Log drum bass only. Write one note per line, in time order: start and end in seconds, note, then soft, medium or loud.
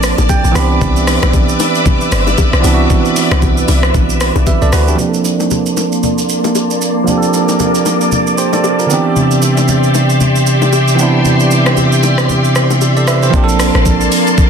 0.00 0.14 A1 loud
0.18 0.28 A1 medium
0.44 0.54 A#1 medium
0.55 0.79 C2 loud
0.82 1.19 C2 loud
1.23 1.56 B1 medium
2.12 2.35 G1 medium
2.53 2.63 B1 medium
2.64 2.88 C2 loud
3.31 3.65 C2 loud
3.68 3.92 C2 loud
3.94 4.32 B1 medium
4.36 4.46 B1 medium
4.62 4.72 C2 medium
4.73 4.96 D2 loud
13.34 13.71 A#1 loud
13.75 14.08 A1 medium